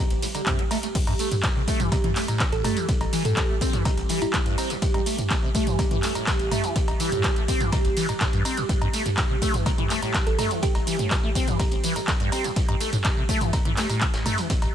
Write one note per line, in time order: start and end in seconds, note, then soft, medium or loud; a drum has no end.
0.00 0.94 G4 medium
0.10 0.14 A1 medium
0.10 closed hi-hat soft
0.22 0.26 A2 medium
0.22 closed hi-hat medium
0.22 open hi-hat loud
0.22 ride medium
0.22 tambourine medium
0.35 0.41 D3 medium
0.35 closed hi-hat medium
0.35 tambourine soft
0.35 cowbell soft
0.46 0.60 C3 medium
0.46 kick loud
0.46 clap loud
0.46 closed hi-hat medium
0.46 mid tom medium
0.46 ride medium
0.46 tambourine soft
0.59 0.63 A3 medium
0.59 closed hi-hat soft
0.71 0.78 A3 loud
0.71 closed hi-hat medium
0.71 open hi-hat medium
0.71 ride medium
0.71 tambourine medium
0.71 cowbell medium
0.83 0.87 A3 medium
0.83 closed hi-hat medium
0.83 tambourine soft
0.95 0.99 A2 medium
0.95 14.75 G4 medium
0.95 kick loud
0.95 closed hi-hat medium
0.95 crash medium
0.95 ride medium
0.95 tambourine soft
1.07 1.14 G2 loud
1.07 closed hi-hat soft
1.07 cowbell medium
1.19 1.29 A3 medium
1.19 closed hi-hat medium
1.19 open hi-hat loud
1.19 ride medium
1.19 tambourine medium
1.31 1.35 A2 medium
1.31 closed hi-hat medium
1.31 mid tom medium
1.31 tambourine soft
1.43 1.48 A2 medium
1.43 kick loud
1.43 snare loud
1.43 clap loud
1.43 closed hi-hat loud
1.43 closed hi-hat medium
1.43 ride medium
1.43 tambourine soft
1.43 cowbell soft
1.56 1.62 C3 medium
1.68 1.81 A3 loud
1.68 kick medium
1.68 closed hi-hat medium
1.68 open hi-hat loud
1.68 ride medium
1.68 tambourine medium
1.80 1.90 E3 medium
1.80 closed hi-hat medium
1.80 mid tom loud
1.80 tambourine soft
1.92 1.96 C3 medium
1.92 kick loud
1.92 closed hi-hat medium
1.92 ride medium
1.92 tambourine soft
1.92 cowbell medium
2.04 2.11 E3 medium
2.04 closed hi-hat soft
2.04 mid tom medium
2.16 2.26 A3 medium
2.16 clap medium
2.16 closed hi-hat medium
2.16 open hi-hat loud
2.16 ride medium
2.16 tambourine medium
2.28 2.42 A2 medium
2.28 closed hi-hat medium
2.28 tambourine soft
2.28 cowbell soft
2.40 2.44 C3 medium
2.40 kick loud
2.40 snare loud
2.40 clap loud
2.40 closed hi-hat medium
2.40 ride medium
2.40 tambourine soft
2.52 2.62 A1 medium
2.52 2.60 A4 medium
2.52 closed hi-hat soft
2.64 2.78 A3 loud
2.64 2.72 A4 medium
2.64 closed hi-hat medium
2.64 mid tom medium
2.64 open hi-hat medium
2.64 ride medium
2.64 tambourine medium
2.64 cowbell medium
2.77 2.86 E3 medium
2.77 closed hi-hat medium
2.77 tambourine soft
2.89 2.93 C3 medium
2.89 kick loud
2.89 closed hi-hat medium
2.89 ride medium
2.89 tambourine soft
3.01 3.05 A1 medium
3.01 closed hi-hat soft
3.01 cowbell medium
3.13 3.23 E3 loud
3.13 closed hi-hat medium
3.13 open hi-hat loud
3.13 ride medium
3.13 tambourine medium
3.25 3.38 A2 medium
3.25 3.42 A4 medium
3.25 closed hi-hat medium
3.25 mid tom medium
3.25 tambourine soft
3.36 3.41 C3 medium
3.36 kick loud
3.36 snare loud
3.36 clap loud
3.36 closed hi-hat medium
3.36 ride medium
3.36 tambourine soft
3.36 cowbell soft
3.49 3.56 A3 medium
3.61 3.75 C4 medium
3.61 kick medium
3.61 closed hi-hat medium
3.61 open hi-hat medium
3.61 ride medium
3.61 tambourine medium
3.73 3.83 E3 medium
3.73 closed hi-hat medium
3.73 mid tom loud
3.73 tambourine soft
3.85 3.89 C3 medium
3.85 kick loud
3.85 closed hi-hat medium
3.85 closed hi-hat loud
3.85 ride medium
3.85 tambourine soft
3.85 cowbell medium
3.97 4.02 A1 medium
3.97 closed hi-hat soft
4.09 4.20 E3 loud
4.09 closed hi-hat medium
4.09 open hi-hat loud
4.09 ride medium
4.09 tambourine medium
4.22 4.26 A2 medium
4.22 4.89 E4 medium
4.22 closed hi-hat medium
4.22 tambourine soft
4.22 cowbell soft
4.33 4.38 A2 loud
4.33 kick loud
4.33 snare loud
4.33 clap loud
4.33 closed hi-hat medium
4.33 ride medium
4.33 tambourine soft
4.46 4.56 G2 loud
4.46 closed hi-hat soft
4.58 4.72 C4 medium
4.58 closed hi-hat medium
4.58 open hi-hat medium
4.58 ride medium
4.58 tambourine medium
4.58 cowbell medium
4.70 4.77 A2 medium
4.70 closed hi-hat medium
4.70 tambourine soft
4.82 4.86 A2 medium
4.82 kick loud
4.82 closed hi-hat medium
4.82 ride medium
4.82 tambourine soft
4.94 5.01 G2 loud
4.94 closed hi-hat soft
4.94 cowbell medium
5.06 5.16 A3 medium
5.06 closed hi-hat medium
5.06 open hi-hat loud
5.06 ride medium
5.06 tambourine medium
5.18 5.23 A2 medium
5.18 closed hi-hat medium
5.18 mid tom medium
5.18 tambourine soft
5.30 5.35 A2 medium
5.30 kick loud
5.30 snare loud
5.30 clap loud
5.30 closed hi-hat medium
5.30 ride medium
5.30 tambourine soft
5.30 cowbell soft
5.43 5.49 C3 medium
5.54 5.68 A3 loud
5.54 kick medium
5.54 closed hi-hat medium
5.54 open hi-hat loud
5.54 ride medium
5.54 tambourine medium
5.67 5.77 E3 medium
5.67 closed hi-hat soft
5.67 mid tom loud
5.67 tambourine soft
5.79 5.83 C3 medium
5.79 kick loud
5.79 closed hi-hat medium
5.79 ride medium
5.79 tambourine soft
5.79 cowbell medium
5.91 5.98 E3 medium
5.91 closed hi-hat soft
5.91 mid tom loud
6.03 6.13 A3 medium
6.03 clap medium
6.03 closed hi-hat medium
6.03 open hi-hat loud
6.03 ride medium
6.03 tambourine medium
6.15 6.29 A2 medium
6.15 closed hi-hat medium
6.15 tambourine soft
6.15 cowbell soft
6.27 6.31 C3 medium
6.27 kick loud
6.27 snare loud
6.27 clap loud
6.27 closed hi-hat medium
6.27 ride medium
6.27 tambourine soft
6.39 6.49 A1 medium
6.39 closed hi-hat soft
6.51 6.65 A3 loud
6.51 closed hi-hat medium
6.51 mid tom medium
6.51 open hi-hat loud
6.51 ride medium
6.51 tambourine medium
6.51 cowbell medium
6.64 6.74 E3 medium
6.64 closed hi-hat medium
6.64 tambourine soft
6.75 6.80 C3 medium
6.75 kick loud
6.75 closed hi-hat medium
6.75 ride medium
6.75 tambourine soft
6.88 6.92 A1 medium
6.88 closed hi-hat soft
6.88 cowbell medium
7.00 7.10 E3 loud
7.00 closed hi-hat medium
7.00 open hi-hat loud
7.00 ride medium
7.00 tambourine medium
7.12 7.26 A2 medium
7.12 closed hi-hat medium
7.12 mid tom medium
7.12 tambourine soft
7.23 7.28 C3 medium
7.23 kick loud
7.23 snare loud
7.23 clap loud
7.23 closed hi-hat medium
7.23 ride medium
7.23 tambourine soft
7.23 cowbell soft
7.36 7.43 A3 medium
7.36 closed hi-hat soft
7.48 7.62 C4 medium
7.48 kick medium
7.48 closed hi-hat medium
7.48 open hi-hat loud
7.48 ride medium
7.48 tambourine medium
7.61 7.70 E3 medium
7.61 closed hi-hat soft
7.61 mid tom medium
7.61 tambourine soft
7.72 7.77 C3 medium
7.72 kick loud
7.72 closed hi-hat medium
7.72 ride medium
7.72 tambourine soft
7.72 cowbell medium
7.84 7.89 A1 medium
7.84 closed hi-hat soft
7.96 8.07 E3 loud
7.96 closed hi-hat medium
7.96 open hi-hat loud
7.96 ride medium
7.96 tambourine medium
8.09 8.13 A2 medium
8.09 closed hi-hat soft
8.09 tambourine soft
8.09 cowbell soft
8.20 8.25 A2 loud
8.20 kick loud
8.20 snare loud
8.20 clap loud
8.20 closed hi-hat medium
8.20 ride medium
8.20 tambourine soft
8.33 8.43 G2 loud
8.33 closed hi-hat soft
8.45 8.59 C4 medium
8.45 closed hi-hat medium
8.45 open hi-hat medium
8.45 ride medium
8.45 tambourine medium
8.45 cowbell medium
8.57 8.64 A2 medium
8.57 closed hi-hat soft
8.57 tambourine soft
8.69 8.73 A2 medium
8.69 kick loud
8.69 closed hi-hat medium
8.69 ride medium
8.69 tambourine soft
8.81 8.88 G2 loud
8.81 closed hi-hat soft
8.81 cowbell medium
8.93 9.04 A3 medium
8.93 closed hi-hat medium
8.93 open hi-hat loud
8.93 ride medium
8.93 tambourine medium
9.06 9.10 A2 medium
9.06 closed hi-hat medium
9.06 mid tom medium
9.06 tambourine soft
9.17 9.22 A2 medium
9.17 kick loud
9.17 snare loud
9.17 clap loud
9.17 closed hi-hat medium
9.17 ride medium
9.17 tambourine soft
9.17 cowbell soft
9.30 9.36 C3 medium
9.42 9.55 A3 loud
9.42 kick medium
9.42 closed hi-hat medium
9.42 open hi-hat medium
9.42 ride medium
9.42 tambourine medium
9.54 9.64 E3 medium
9.54 closed hi-hat medium
9.54 mid tom medium
9.54 tambourine soft
9.66 9.70 C3 medium
9.66 kick loud
9.66 closed hi-hat medium
9.66 ride medium
9.66 tambourine soft
9.66 cowbell medium
9.78 9.85 E3 medium
9.78 closed hi-hat soft
9.78 mid tom medium
9.90 10.00 A3 medium
9.90 clap medium
9.90 closed hi-hat medium
9.90 open hi-hat loud
9.90 ride medium
9.90 tambourine medium
10.02 10.16 A2 medium
10.02 closed hi-hat medium
10.02 tambourine soft
10.02 cowbell soft
10.14 10.18 C3 medium
10.14 kick loud
10.14 snare loud
10.14 clap loud
10.14 closed hi-hat medium
10.14 ride medium
10.14 tambourine soft
10.26 10.36 A1 medium
10.26 10.34 A4 medium
10.26 closed hi-hat soft
10.39 10.52 A3 loud
10.39 10.46 A4 medium
10.39 closed hi-hat medium
10.39 mid tom medium
10.39 open hi-hat medium
10.39 ride medium
10.39 tambourine medium
10.39 cowbell medium
10.51 10.61 E3 medium
10.51 closed hi-hat medium
10.51 tambourine soft
10.62 10.67 C3 medium
10.62 10.99 G4 medium
10.62 kick loud
10.62 closed hi-hat loud
10.62 closed hi-hat medium
10.62 ride medium
10.62 tambourine soft
10.75 10.79 A1 medium
10.75 closed hi-hat soft
10.75 cowbell medium
10.87 10.97 E3 loud
10.87 closed hi-hat medium
10.87 open hi-hat loud
10.87 ride medium
10.87 tambourine medium
10.99 11.13 A2 medium
10.99 closed hi-hat medium
10.99 mid tom medium
10.99 tambourine soft
11.11 11.15 C3 medium
11.11 kick loud
11.11 snare loud
11.11 clap loud
11.11 closed hi-hat medium
11.11 ride medium
11.11 tambourine soft
11.11 cowbell soft
11.23 11.30 A3 medium
11.35 11.49 C4 medium
11.35 kick medium
11.35 closed hi-hat medium
11.35 open hi-hat medium
11.35 ride medium
11.35 tambourine medium
11.47 11.57 E3 medium
11.47 closed hi-hat soft
11.47 mid tom medium
11.47 tambourine soft
11.59 11.64 C3 medium
11.59 kick loud
11.59 closed hi-hat medium
11.59 ride medium
11.59 tambourine soft
11.59 cowbell medium
11.71 11.76 A1 medium
11.71 closed hi-hat soft
11.83 11.94 E3 loud
11.83 closed hi-hat medium
11.83 open hi-hat loud
11.83 ride medium
11.83 tambourine medium
11.96 12.00 A2 medium
11.96 closed hi-hat medium
11.96 tambourine soft
11.96 cowbell soft
12.07 12.12 A2 loud
12.07 kick loud
12.07 snare loud
12.07 clap loud
12.07 closed hi-hat medium
12.07 ride medium
12.07 tambourine soft
12.20 12.30 G2 loud
12.20 closed hi-hat soft
12.32 12.46 C4 medium
12.32 closed hi-hat medium
12.32 open hi-hat medium
12.32 ride medium
12.32 tambourine medium
12.32 cowbell medium
12.44 12.51 A2 medium
12.44 closed hi-hat medium
12.44 tambourine soft
12.56 12.60 A2 medium
12.56 kick loud
12.56 closed hi-hat medium
12.56 ride medium
12.56 tambourine soft
12.69 12.75 G2 loud
12.69 closed hi-hat soft
12.69 cowbell medium
12.80 12.91 A3 medium
12.80 closed hi-hat medium
12.80 open hi-hat loud
12.80 ride medium
12.80 tambourine medium
12.93 12.97 A2 medium
12.93 closed hi-hat medium
12.93 mid tom medium
12.93 tambourine soft
13.04 13.09 A2 medium
13.04 kick loud
13.04 snare loud
13.04 clap loud
13.04 closed hi-hat medium
13.04 ride medium
13.04 tambourine soft
13.04 cowbell soft
13.17 13.24 C3 medium
13.29 13.43 A3 loud
13.29 kick medium
13.29 closed hi-hat medium
13.29 open hi-hat medium
13.29 ride medium
13.29 tambourine medium
13.41 13.51 E3 medium
13.41 closed hi-hat medium
13.41 mid tom medium
13.41 tambourine soft
13.53 13.57 C3 medium
13.53 kick loud
13.53 closed hi-hat loud
13.53 closed hi-hat medium
13.53 ride medium
13.53 tambourine soft
13.53 cowbell medium
13.65 13.72 E3 medium
13.65 closed hi-hat soft
13.65 mid tom medium
13.77 13.87 A3 medium
13.77 snare loud
13.77 clap medium
13.77 closed hi-hat medium
13.77 open hi-hat loud
13.77 ride medium
13.77 tambourine medium
13.90 14.03 A2 medium
13.90 closed hi-hat medium
13.90 closed hi-hat soft
13.90 tambourine soft
13.90 cowbell soft
14.01 14.06 C3 medium
14.01 kick loud
14.01 clap loud
14.01 closed hi-hat medium
14.01 ride medium
14.01 tambourine soft
14.14 14.24 A1 medium
14.14 snare loud
14.14 closed hi-hat soft
14.14 closed hi-hat medium
14.26 14.39 A3 loud
14.26 closed hi-hat soft
14.26 mid tom medium
14.26 open hi-hat medium
14.26 ride medium
14.26 tambourine medium
14.26 cowbell medium
14.38 14.48 E3 medium
14.38 closed hi-hat medium
14.38 tambourine soft
14.50 14.54 C3 medium
14.50 kick loud
14.50 closed hi-hat medium
14.50 ride medium
14.50 tambourine soft
14.62 14.66 A1 medium
14.62 closed hi-hat soft
14.62 cowbell medium